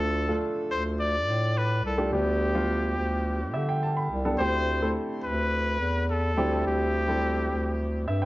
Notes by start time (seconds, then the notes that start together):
Already playing: D2 D3 A3 D4 F4 A4
0.29 A3 D4 F4 A4
0.70 D2 C5
1.00 D5
1.27 A2
1.57 B4
1.84 C2 A4
1.98 A3 D4 F4 G4
2.12 D2 D3 G3 B3 D4 G4
2.54 G3 B3 D4 F4
2.97 D2
3.54 D3 E5
3.69 G5
3.83 A5
3.97 B5
4.11 C2
4.25 G3 B3 D4 A4
4.38 D2 D3 A3 C4 E4 G4 C5
4.82 A3 C4 E4 A4
5.24 D2 B4
5.80 E2
6.11 A4
6.37 D2 D3 G3 C4 E4 G4
6.66 D2 G4
7.08 G3 C4 E4 A4
7.51 D2
8.08 G2 E5
8.22 G5